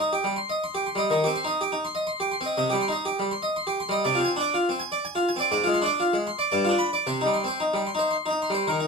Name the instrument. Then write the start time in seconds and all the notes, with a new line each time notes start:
harpsichord
Already playing: D#4
0.00 D#5
0.13 G4
0.24 G3
0.36 C6
0.50 D#5
0.64 C6
0.75 G4
0.86 C6
0.95 G3 D#5
1.10 D#3 D#5
1.24 C4 G4
1.36 C6
1.45 D#4 D#5
1.61 G4
1.72 D#4
1.85 C6
1.95 D#5
2.07 C6
2.20 G4
2.32 C6
2.41 C4
2.45 D#5
2.57 C3 D#5
2.70 G3 G4
2.81 C6
2.88 D#4 D#5
3.05 G4
3.19 G3
3.31 C6
3.43 D#5
3.56 C6
3.67 G4
3.80 C6
3.89 G3 D#5
4.04 C3 D5
4.15 C4 F4
4.25 G#5
4.36 D4 D5
4.54 F4
4.69 C4
4.79 G#5
4.92 D5
5.05 G#5
5.15 F4
5.29 G#5
5.36 C4 D5
5.52 G#2 D5
5.64 G#3 F4
5.74 C6
5.82 D4
5.86 D5
6.00 F4
6.13 G#3
6.27 C6
6.39 D5
6.52 G2 D5
6.64 F4
6.69 D4
6.79 B5
6.93 D5
7.07 C3 C5
7.21 D#4
7.26 G3
7.34 C6
7.44 C4 C5
7.60 D#4
7.74 G3
7.87 C6
7.95 D#4
7.99 C5
8.11 C6
8.26 D#4
8.30 D#4
8.42 C6
8.50 G3
8.54 C5
8.67 D#3 A#4
8.80 D#4